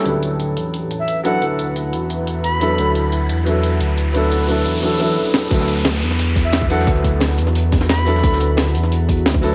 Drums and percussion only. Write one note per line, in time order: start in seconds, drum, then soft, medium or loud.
0.06 closed hi-hat medium
0.23 closed hi-hat medium
0.40 closed hi-hat medium
0.57 closed hi-hat loud
0.74 closed hi-hat medium
0.91 closed hi-hat medium
1.08 closed hi-hat medium
1.25 closed hi-hat medium
1.42 closed hi-hat medium
1.59 closed hi-hat medium
1.76 closed hi-hat medium
1.93 closed hi-hat medium
2.10 closed hi-hat medium
2.27 closed hi-hat medium
2.44 closed hi-hat medium
2.61 closed hi-hat medium
2.78 closed hi-hat medium
2.95 closed hi-hat medium
3.12 closed hi-hat medium
3.29 closed hi-hat medium
3.46 closed hi-hat medium
3.63 closed hi-hat medium
3.80 closed hi-hat medium
3.98 closed hi-hat medium
4.15 closed hi-hat medium
4.32 closed hi-hat medium
4.49 closed hi-hat medium
4.66 closed hi-hat medium
4.83 closed hi-hat medium
5.00 closed hi-hat medium
5.34 snare medium
5.51 kick loud
5.51 closed hi-hat medium
5.51 crash loud
5.60 snare medium
5.68 closed hi-hat medium
5.85 snare loud
5.85 closed hi-hat loud
5.85 closed hi-hat medium
5.94 snare medium
6.02 closed hi-hat medium
6.11 snare soft
6.19 closed hi-hat loud
6.19 closed hi-hat medium
6.36 kick medium
6.36 closed hi-hat medium
6.44 closed hi-hat soft
6.53 snare loud
6.53 closed hi-hat loud
6.53 closed hi-hat medium
6.62 kick loud
6.62 snare soft
6.70 closed hi-hat medium
6.70 open hi-hat medium
6.79 snare medium
6.87 kick loud
6.87 closed hi-hat medium
6.96 closed hi-hat soft
7.04 kick medium
7.04 closed hi-hat medium
7.20 snare loud
7.20 closed hi-hat medium
7.30 snare medium
7.38 closed hi-hat medium
7.38 closed hi-hat loud
7.47 snare soft
7.55 closed hi-hat medium
7.55 closed hi-hat loud
7.72 kick loud
7.72 snare soft
7.72 closed hi-hat medium
7.81 snare medium
7.81 snare soft
7.89 snare loud
7.89 closed hi-hat medium
7.98 snare medium
7.98 snare soft
8.07 closed hi-hat medium
8.07 open hi-hat medium
8.15 snare soft
8.24 kick loud
8.24 closed hi-hat medium
8.32 snare medium
8.40 closed hi-hat medium
8.57 snare loud
8.57 closed hi-hat medium
8.66 snare medium
8.75 closed hi-hat medium
8.83 snare soft
8.92 closed hi-hat medium
9.09 kick medium
9.09 closed hi-hat medium
9.17 closed hi-hat soft
9.26 snare loud
9.26 closed hi-hat medium
9.26 closed hi-hat loud
9.34 kick loud
9.34 snare soft
9.43 closed hi-hat medium
9.43 open hi-hat medium